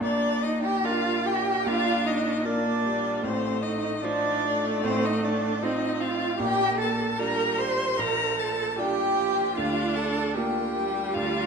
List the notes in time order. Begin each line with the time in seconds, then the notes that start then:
0.00 A#1 A#2 D4 D5
0.43 D#4 D#5
0.63 G4 G5
0.84 D4 F4 A#4 F5
1.26 G4 G5
1.66 A#1 A#2 D4 F4 F5
2.06 D#4 D#5
2.44 A#3 D4 F4 A#4 D5
2.84 G3
3.23 A1 A2 A3 C4 C5
3.63 D#4 D#5
4.03 F3 D4 D#4 F4 C5 D5
4.44 A3
4.83 A1 A2 C4 C5
5.04 D#4 D#5
5.24 D4 D5
5.62 C4 D#4 F4 C5 D#5
6.00 F4 F5
6.38 A#1 A#2 A#3 G4 G5
6.78 A4 A5
7.17 G3 D4 F4 A#4 D5 A#5
7.58 C5 C6
7.97 A#1 A#2 F3 A#4 A#5
8.35 A4
8.39 A5
8.76 G3 D4 F4 G4 D5 G5
9.17 F3
9.56 D2 D3 D4 F4 F5
9.96 A4 A5
10.35 A#3 D4 F4 G4 A#4 G5
10.76 G3
11.13 D2 D3 F4 F5